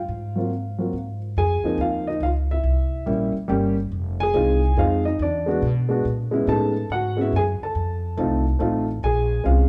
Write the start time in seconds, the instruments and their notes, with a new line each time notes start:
Already playing: upright piano F4 F5
0.08 upright bass G#2
0.36 upright piano F#3 A#3 C4 F4
0.78 upright piano F#3 A#3 C4 F4
0.93 upright bass G#2
1.37 upright bass F2, upright piano G#4 G#5
1.63 upright piano F3 A#3 C4 D#4, muted upright bass stroke
1.78 upright bass D#2, upright piano F5
1.82 upright piano F4
2.07 upright piano D#4 D#5
2.20 upright bass C#2, upright piano F5
2.25 upright piano F4
2.51 upright piano E4 E5
2.64 upright bass C2
3.06 upright bass A#1, upright piano G3 A#3 C#4 E4
3.35 muted upright bass stroke
3.48 upright bass G1, upright piano G3 A#3 C#4 G4
3.92 upright bass F1
4.20 upright piano G#4 G#5
4.34 upright bass C2, upright piano G#3 C4 D#4 F4
4.77 upright bass F2, upright piano G#3 C4 D#4 F4 F5
5.05 upright piano D#4 D#5
5.19 upright bass E2, upright piano D5
5.23 upright piano D4
5.46 upright piano G#3 B3 D4 F#4
5.62 upright bass B2
5.89 upright piano G#3 B3 D4 F#4
6.05 upright bass A#2
6.31 upright piano G#3 B3 C#4 E4
6.47 upright bass A2, upright piano G#3 B3 C#4 D#4 A5
6.52 upright piano A4
6.90 upright bass G#2, upright piano F#5
6.94 upright piano F#4
7.17 upright piano G#3 B3 C#4 F#4
7.21 upright piano E4 E5
7.32 upright bass F#2, upright piano G#5
7.38 upright piano G#4
7.60 upright piano A5, muted upright bass stroke
7.65 upright piano A4
7.75 upright bass F2
8.17 upright bass C2, upright piano A3 C4 D#4 F4
8.59 upright bass A1, upright piano A3 C4 D#4 F4
9.03 upright bass A#1, upright piano G#4 G#5
9.44 upright bass C2, upright piano G#3 C4 C#4 F4 F5